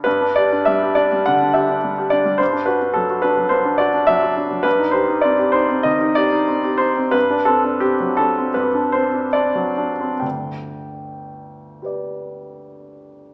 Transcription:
0.04 G2 B4
0.21 D4
0.36 G4 D5
0.52 D4
0.65 G3 E5
0.82 G4
0.95 D4 D5
1.12 G3
1.26 D3 F#5
1.42 D4
1.53 G4 E5
1.69 D4
1.84 G3
1.98 G4
2.10 D4 D5
2.25 G3
2.38 G2 C5
2.53 D4
2.66 F#4 B4
2.81 D4
2.94 F#3 A4
3.10 F#4
3.22 D4 B4
3.37 F#3
3.49 G2 C5
3.65 D4
3.78 F#4 D5
3.94 D4
4.07 F#3 E5
4.23 F#4
4.37 D4
4.51 F#3
4.63 G2 B4
4.79 D#4
4.91 G4 C5
5.08 D#4
5.21 C4 D5
5.39 G4
5.52 D#4 C5
5.69 C4
5.83 D#3 D#5
6.01 D#4
6.15 G4 D5
6.32 D#4
6.48 C4
6.64 G4
6.78 D#4 C5
6.97 C4
7.11 G2 B4
7.30 D4
7.45 C4 A4
7.64 D4
7.80 C4 G4
8.00 F#3
8.17 D4 A4
8.38 C4
8.54 G2 B4
8.75 D4
8.92 C4 C5
9.14 D4
9.33 C4 D5
9.55 F#3
9.77 D4
10.00 C4
10.20 G1 D2 G5
11.82 G4 B4 D5

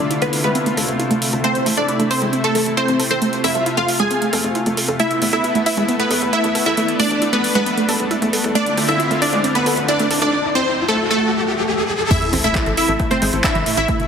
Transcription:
Already playing: C3 D3 A3 D4 E4 F4 D5
0.11 E4, closed hi-hat
0.22 D2 A3 B3 B4, closed hi-hat
0.33 open hi-hat
0.44 D2 G#3 B3 B4, closed hi-hat
0.55 C4, closed hi-hat
0.66 A3, closed hi-hat
0.77 D2 A4, open hi-hat
0.88 D2, closed hi-hat, mid tom
0.99 E4, closed hi-hat
1.11 D2 A3, closed hi-hat
1.22 A4, open hi-hat
1.33 D2 A4, closed hi-hat
1.44 A3 C4 E4 C5, closed hi-hat
1.55 closed hi-hat, mid tom
1.66 A1 A3, open hi-hat
1.77 E1 D4 A4 D5
1.88 E4, closed hi-hat
2.00 A1 A3, closed hi-hat
2.11 C4 C5, open hi-hat
2.22 A1 G#3, closed hi-hat
2.33 C4, closed hi-hat
2.44 A3 A4, closed hi-hat, mid tom
2.55 A1 A4, open hi-hat
2.66 A1, closed hi-hat
2.77 C4 E4 C5, closed hi-hat
2.88 A1 A3, closed hi-hat
3.00 A4, open hi-hat, mid tom
3.11 A1 C4 A4 C5, closed hi-hat
3.22 A3 F4, closed hi-hat
3.33 closed hi-hat
3.44 F2 A3 E4 E5, open hi-hat
3.55 C2 A4, closed hi-hat
3.66 E4, closed hi-hat
3.77 F2 A3 F4 F5, closed hi-hat
3.88 open hi-hat
3.99 F2 G#3 G#4 G#5, closed hi-hat
4.11 C4, closed hi-hat
4.22 A3, closed hi-hat
4.33 F2 A4, open hi-hat
4.44 F2, closed hi-hat, mid tom
4.55 E4, closed hi-hat
4.66 F2 A3, closed hi-hat
4.77 A4, open hi-hat
4.88 F2 A4, closed hi-hat
4.99 A3 B3 E4 E5, closed hi-hat, riser
5.11 closed hi-hat, mid tom
5.22 E2 A3, open hi-hat
5.33 D2 E4 A4 E5, closed hi-hat
5.44 E4, closed hi-hat
5.55 E2 A3, closed hi-hat
5.66 E4 E5, open hi-hat
5.77 E2 G#3, closed hi-hat
5.88 B3, closed hi-hat
5.99 A3 B3 B4, closed hi-hat, mid tom
6.11 E2 A4, open hi-hat
6.22 E2, closed hi-hat
6.33 E4 E5, closed hi-hat
6.44 E2 A3, closed hi-hat
6.55 A4, open hi-hat, mid tom
6.66 E2 E4 A4 E5, closed hi-hat
6.77 A3 D4, closed hi-hat
6.88 closed hi-hat
7.00 E2 A3 D4 D5, open hi-hat
7.11 D2 A4, closed hi-hat
7.22 E4, closed hi-hat
7.33 E2 A3 B3 B4, closed hi-hat
7.44 open hi-hat
7.55 E2 G#3 B3 B4
7.66 B3, closed hi-hat
7.77 A3, closed hi-hat
7.88 E2 A4, open hi-hat
8.00 E2, closed hi-hat, mid tom
8.11 E4, closed hi-hat
8.22 E2 A3, closed hi-hat
8.33 A4, open hi-hat
8.44 E2 A4, closed hi-hat
8.55 D3 A3 C4 D4 E4 F4 D5, closed hi-hat
8.66 closed hi-hat, mid tom
8.77 D2 A3, open hi-hat
8.88 C2 E4 A4 E5, closed hi-hat
9.00 E4, closed hi-hat
9.11 D2 A3, closed hi-hat
9.22 D4 D5, open hi-hat
9.33 D2 G#3, closed hi-hat
9.44 C4, closed hi-hat
9.55 A3 B3 B4, closed hi-hat, mid tom
9.66 D2 A4, open hi-hat
9.77 D2, closed hi-hat
9.88 D4 E4 D5, closed hi-hat
9.99 D2 A3, closed hi-hat
10.11 A4, open hi-hat, mid tom
10.22 D2 D4 A4 D5, closed hi-hat
10.55 C4 C5
10.88 A3 A4
11.11 A3 A4
11.22 swell
12.11 C3 A3 E4 E5, kick, closed hi-hat, crash, sub drop
12.22 closed hi-hat, mid tom
12.33 A1 C4, open hi-hat
12.44 E1 A3 E4 E5, closed hi-hat
12.55 A3, kick, clap, closed hi-hat
12.66 A1 A4, closed hi-hat
12.77 E4 E5, open hi-hat
12.88 A1 A3, closed hi-hat
13.00 A3, kick, closed hi-hat
13.11 A3 C4 C5, closed hi-hat, mid tom
13.22 A1 G#3, open hi-hat
13.33 A1, closed hi-hat
13.44 D4 E4 E5, kick, clap, closed hi-hat
13.55 A1 E3, closed hi-hat
13.66 A2, open hi-hat
13.77 A1 E4 E5, closed hi-hat
13.88 D3 A3 F4, kick, closed hi-hat
14.00 closed hi-hat, mid tom

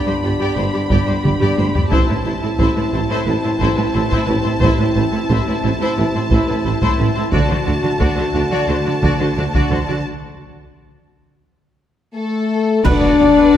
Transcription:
Already playing: B3 D4 B5
0.06 G2 G4 C5
0.22 G1 G2 G4 D5
0.40 G2 G4 D5
0.56 G1 G2 G4 C5
0.73 G2 G4 D5
0.90 G1 G2 G4 D5, taiko
1.07 G2 G4 C5
1.24 G1 G2 G4 D5, taiko mid
1.40 G2 G4 D5, taiko low-mid
1.58 G1 G2 G4 C5, taiko high
1.74 G2 G4 D5, taiko low
1.90 A1 A2 C4 E4 C5 A5, taiko
2.09 A2 E4 B4
2.25 A1 A2 E4 C5
2.42 A2 E4 A4
2.58 A1 A2 E4 C5, taiko
2.76 A2 E4 B4
2.92 A1 A2 E4 C5
3.10 A2 E4 C5
3.25 A1 A2 E4 B4
3.43 A2 E4 C5
3.59 A1 A2 E4 C5, taiko
3.76 A2 E4 B4
3.92 A1 A2 E4 C5
4.09 A2 E4 C5, taiko
4.26 A1 A2 B4
4.30 E4
4.43 A2 C5
4.47 E4
4.59 A1 A2 C5, taiko
4.64 E4
4.78 A2 E4 B4
4.94 A1 A2 E4 C5
5.12 A2 E4 A4
5.29 A1 A2 E4 C5, taiko
5.46 A2 E4 B4
5.63 A1 A2 E4 C5
5.80 A2 E4 C5
5.97 A1 A2 E4 B4
6.15 A2 E4 C5
6.31 A1 A2 E4 C5, taiko
6.47 A2 E4 B4
6.64 A1 A2 E4 C5
6.82 A2 E4 C5, taiko
6.97 A1 A2 E4 B4
7.14 A2 E4 C5
7.31 D2 D3 A3 F#4 D5 A5, taiko
7.48 D3 F#4 C5
7.65 D2 D3 F#4 D5
7.83 D3 F#4 A4
7.99 D2 D3 F#4 D5, taiko
8.16 D3 F#4 C5
8.33 D2 D3 F#4 D5
8.51 D3 F#4 D5
8.68 D2 D3 F#4 C5
8.86 D3 F#4 D5
9.02 D2 D3 F#4 D5, taiko
9.20 D3 F#4 C5
9.36 D2 D3 F#4 D5
9.53 D3 F#4 D5, taiko
9.71 D2 D3 F#4 C5
9.88 D3 F#4 D5
12.14 A3 A4
12.84 B1 B2 D4 B4 D5 F#5, concert bass drum, taiko, crash, impact
13.02 B2 F#4
13.19 B1 B2 D4
13.37 B2 B4
13.53 B1 B2

